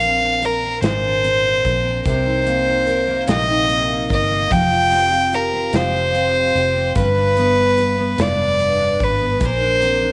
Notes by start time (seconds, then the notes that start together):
Already playing: A#1 A#2 D4 A#4 F5
0.01 C4, closed hi-hat
0.21 D4
0.42 A#4, closed hi-hat
0.63 C4
0.82 G#1 A#2 A#4 C5, snare, closed hi-hat
1.04 D4
1.24 C4, closed hi-hat
1.44 D4
1.64 A#1 A#4, kick, closed hi-hat
1.85 C4
2.05 C2 C3 A#4 C5, kick, closed hi-hat
2.26 D#4
2.46 A#3, closed hi-hat
2.68 D#4
2.87 A#4, closed hi-hat
3.07 A#3
3.27 A#1 C3 A#4 D#5, snare, closed hi-hat
3.48 D#4
3.68 A#3, closed hi-hat
3.88 D#4
4.10 G1 A#4 D#5, kick, closed hi-hat
4.31 A#3
4.51 F1 F3 G4 G5, kick, closed hi-hat
4.71 F4
4.91 C4, closed hi-hat
5.12 F4
5.33 G4 A#4, closed hi-hat
5.53 C4
5.73 F1 F3 G4 C5, snare, closed hi-hat
5.93 F4
6.14 C4, closed hi-hat
6.35 F4
6.55 F1 G4, closed hi-hat
6.75 C4
6.95 G1 G2 B4, kick, closed hi-hat
7.16 D4
7.37 B3, closed hi-hat
7.58 D4
7.78 B4, closed hi-hat
7.98 B3
8.18 F1 G2 B4 D5, snare, closed hi-hat
8.38 D4
8.59 B3, closed hi-hat
8.79 D4
8.99 G#1 B4, kick, closed hi-hat
9.03 B4
9.19 B3
9.40 A#1 A#2 A#4, kick, closed hi-hat
9.45 C5
9.60 D4
9.81 C4, closed hi-hat
10.02 D4